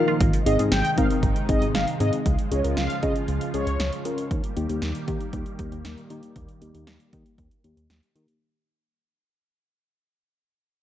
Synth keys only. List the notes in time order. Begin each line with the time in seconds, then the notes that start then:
Already playing: D#4 F4 A#4 F5
0.46 C4 D#4 G#4
0.59 C4 D#4 G#4
0.98 C4 D#4 A#4
1.49 C4 D#4 G#4
2.00 C4 D#4 G#4
2.51 C#4 F4 G#4
2.64 C#4 F4 A#4
3.03 C#4 F4 G#4
3.54 C#4 F4 G#4
4.05 C#4 F4 A#4
4.57 A#3 D#4 G4
4.69 A#3 D#4 G4
5.08 A#3 D#4 G4
5.59 A#3 D#4 G4
6.10 A#3 D#4 G4
6.62 A#3 D#4 G4
6.74 A#3 D#4 G4
7.13 A#3 D#4 G4
7.64 A#3 D#4 G4
8.15 A#3 D#4 G4